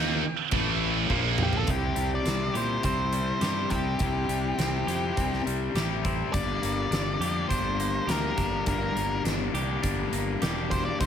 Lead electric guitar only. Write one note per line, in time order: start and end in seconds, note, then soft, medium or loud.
0.00 1.07 G5 medium
1.43 1.54 G4 medium
1.58 1.70 A4 medium
1.71 2.10 G4 medium
2.15 2.56 D5 medium
2.57 2.83 C5 medium
2.85 3.74 C5 medium
3.70 5.42 G4 medium
6.33 7.49 D5 medium
7.49 8.10 C5 medium
8.09 8.63 A#4 medium
8.68 9.22 A#4 medium
10.71 10.85 C5 medium
10.85 11.00 D5 medium
11.00 11.06 C5 medium